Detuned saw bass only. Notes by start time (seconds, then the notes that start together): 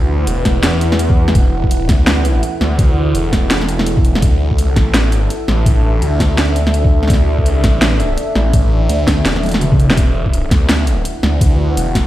Already playing: D2
0.27 E1
0.63 E2
1.35 E1
1.72 D#1
1.89 D2
2.61 D2
3.15 E1
3.51 E1
4.04 E1
4.22 D2
4.59 C#2
4.76 A1
5.48 A1
6.02 D2
6.38 D2
7.10 D2
7.64 A1
8.36 A1
8.89 D2
9.25 E1
9.97 E1
10.51 D2
11.23 D2
11.77 E1